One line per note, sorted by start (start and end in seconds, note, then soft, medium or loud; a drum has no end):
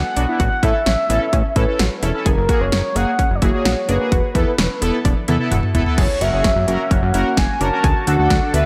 0.00 0.37 F#5 loud
0.17 0.27 B1 medium
0.17 0.24 B3 medium
0.17 0.24 D4 medium
0.17 0.30 D4 medium
0.17 0.24 F#4 medium
0.17 closed hi-hat medium
0.28 0.40 B3 medium
0.28 0.40 D4 medium
0.28 0.40 E4 medium
0.40 0.50 A1 loud
0.40 0.53 F#4 medium
0.40 0.65 F#5 loud
0.40 kick loud
0.40 closed hi-hat medium
0.63 0.73 A2 loud
0.63 0.78 C#4 medium
0.63 0.76 E4 medium
0.63 0.78 E4 medium
0.63 0.78 A4 medium
0.63 1.58 E5 loud
0.63 kick medium
0.63 closed hi-hat medium
0.86 0.96 A1 loud
0.86 1.00 C#4 medium
0.86 snare loud
0.86 closed hi-hat medium
1.10 1.19 A1 loud
1.10 1.23 B3 medium
1.10 1.25 C#4 medium
1.10 1.25 E4 medium
1.10 1.25 A4 medium
1.10 closed hi-hat medium
1.33 1.43 A1 loud
1.33 1.46 C#4 medium
1.33 kick medium
1.33 closed hi-hat medium
1.56 1.66 A2 loud
1.56 1.64 C#4 medium
1.56 1.64 E4 medium
1.56 1.69 E4 medium
1.56 1.64 A4 medium
1.56 2.03 B4 medium
1.56 kick medium
1.56 closed hi-hat medium
1.68 1.83 C#4 medium
1.68 1.83 E4 medium
1.68 1.83 A4 medium
1.79 1.89 A1 loud
1.79 1.93 F#4 medium
1.79 snare loud
1.79 closed hi-hat medium
2.03 2.13 E1 loud
2.03 2.10 C#4 medium
2.03 2.10 E4 medium
2.03 2.16 E4 medium
2.03 2.10 A4 medium
2.03 closed hi-hat medium
2.14 2.26 C#4 medium
2.14 2.26 E4 medium
2.14 2.26 A4 medium
2.26 2.36 F#1 loud
2.26 2.39 G#4 medium
2.26 2.62 A#4 loud
2.26 kick loud
2.26 closed hi-hat medium
2.37 2.47 F#1 loud
2.49 2.64 A#3 medium
2.49 2.64 F#4 medium
2.49 2.62 F#4 medium
2.49 2.64 G#4 medium
2.49 kick medium
2.49 closed hi-hat medium
2.61 2.71 F#1 loud
2.61 2.97 C#5 loud
2.72 2.82 F#1 loud
2.72 2.86 C#4 medium
2.72 snare loud
2.72 closed hi-hat medium
2.95 3.05 F#1 loud
2.95 3.11 A#3 medium
2.95 3.09 A#3 medium
2.95 3.11 F#4 medium
2.95 3.11 G#4 medium
2.95 3.37 F#5 loud
2.95 closed hi-hat medium
3.19 3.32 C#4 medium
3.19 kick medium
3.19 closed hi-hat medium
3.30 3.40 F#1 medium
3.35 3.44 D5 medium
3.42 3.52 F#1 loud
3.42 3.50 A#3 medium
3.42 3.55 E4 medium
3.42 3.50 F#4 medium
3.42 3.50 G#4 medium
3.42 3.88 C#5 loud
3.42 kick medium
3.42 closed hi-hat medium
3.54 3.69 A#3 medium
3.54 3.69 F#4 medium
3.54 3.69 G#4 medium
3.65 3.75 A#1 medium
3.65 3.79 F#4 medium
3.65 snare loud
3.65 closed hi-hat medium
3.89 3.99 F#1 medium
3.89 3.96 A#3 medium
3.89 4.02 D4 medium
3.89 3.96 F#4 medium
3.89 3.96 G#4 medium
3.89 5.71 B4 loud
3.89 closed hi-hat medium
4.00 4.12 A#3 medium
4.00 4.12 F#4 medium
4.00 4.12 G#4 medium
4.12 4.22 E1 loud
4.12 4.25 F#4 medium
4.12 kick loud
4.12 closed hi-hat medium
4.35 4.45 E2 medium
4.35 4.50 B3 medium
4.35 4.50 E4 medium
4.35 4.48 E4 medium
4.35 4.50 A4 medium
4.35 kick medium
4.35 closed hi-hat medium
4.58 4.68 E1 medium
4.58 4.72 C#4 medium
4.58 snare loud
4.58 closed hi-hat medium
4.82 4.92 E1 loud
4.82 4.95 B3 medium
4.82 4.97 B3 medium
4.82 4.97 E4 medium
4.82 4.97 A4 loud
4.82 closed hi-hat medium
5.05 5.15 E1 loud
5.05 5.18 D4 medium
5.05 kick medium
5.05 closed hi-hat medium
5.05 high tom medium
5.28 5.38 E2 loud
5.28 5.36 B3 medium
5.28 5.36 E4 medium
5.28 5.41 E4 medium
5.28 5.36 A4 loud
5.28 closed hi-hat medium
5.28 mid tom medium
5.40 5.55 B3 medium
5.40 5.55 E4 medium
5.40 5.55 A4 medium
5.51 5.61 E1 loud
5.51 5.65 F#4 medium
5.51 closed hi-hat medium
5.51 mid tom medium
5.63 mid tom medium
5.75 5.85 E1 medium
5.75 5.82 B3 medium
5.75 5.82 E4 medium
5.75 5.88 E4 medium
5.75 5.82 A4 loud
5.75 closed hi-hat medium
5.75 floor tom medium
5.86 5.98 B3 medium
5.86 5.98 E4 medium
5.86 5.98 A4 medium
5.86 floor tom medium
5.98 6.08 F#1 loud
5.98 7.82 A#3 medium
5.98 7.82 C#4 medium
5.98 8.66 F#4 medium
5.98 6.11 G#4 medium
5.98 6.23 C#5 medium
5.98 kick loud
5.98 closed hi-hat medium
5.98 crash medium
6.21 6.31 F#1 loud
6.21 6.29 C#4 medium
6.21 6.29 F#4 medium
6.21 6.34 F#4 medium
6.21 6.29 A#4 medium
6.21 6.92 E5 loud
6.21 closed hi-hat medium
6.33 6.43 F#1 medium
6.33 6.48 C#4 medium
6.33 6.48 F#4 medium
6.33 6.48 G#4 medium
6.44 6.54 F#1 loud
6.44 6.58 C#4 medium
6.44 kick loud
6.44 snare loud
6.44 closed hi-hat medium
6.56 6.66 F#2 medium
6.68 6.78 F#1 loud
6.68 6.81 A#3 medium
6.68 6.83 C#4 medium
6.68 6.83 F#4 medium
6.68 6.83 A#4 medium
6.68 closed hi-hat medium
6.91 7.01 F#1 loud
6.91 7.04 C#4 medium
6.91 7.39 F#5 loud
6.91 kick loud
6.91 closed hi-hat medium
7.03 7.12 F#2 loud
7.14 7.24 F#1 loud
7.14 7.29 C#4 medium
7.14 7.27 E4 medium
7.14 7.29 F#4 medium
7.14 7.29 A#4 medium
7.14 closed hi-hat medium
7.37 7.47 F#1 loud
7.37 7.51 F#4 medium
7.37 7.62 G#5 loud
7.37 kick loud
7.37 snare loud
7.37 closed hi-hat medium
7.61 7.71 F#1 loud
7.61 7.68 C#4 medium
7.61 7.74 D4 medium
7.61 7.68 F#4 medium
7.61 7.68 A#4 medium
7.61 8.09 A5 loud
7.61 closed hi-hat medium
7.72 7.84 C#4 medium
7.72 7.84 F#4 medium
7.72 7.84 A#4 medium
7.84 7.94 D2 loud
7.84 8.66 D3 medium
7.84 8.66 D4 medium
7.84 7.97 G#4 medium
7.84 8.66 A4 medium
7.84 kick loud
7.84 closed hi-hat medium
8.07 8.17 D2 loud
8.07 8.15 D4 medium
8.07 8.21 F#4 medium
8.07 8.15 F#4 medium
8.07 8.15 A4 medium
8.07 8.53 F#5 loud
8.07 closed hi-hat medium
8.19 8.29 D2 loud
8.19 8.34 D4 medium
8.19 8.34 F#4 medium
8.19 8.34 A4 medium
8.30 8.40 D2 loud
8.30 8.44 D4 medium
8.30 kick loud
8.30 snare loud
8.30 closed hi-hat medium
8.54 8.64 D2 loud
8.54 8.66 B3 medium
8.54 8.66 D4 medium
8.54 8.66 F#4 medium
8.54 8.66 B4 medium
8.54 8.66 E5 medium
8.54 closed hi-hat medium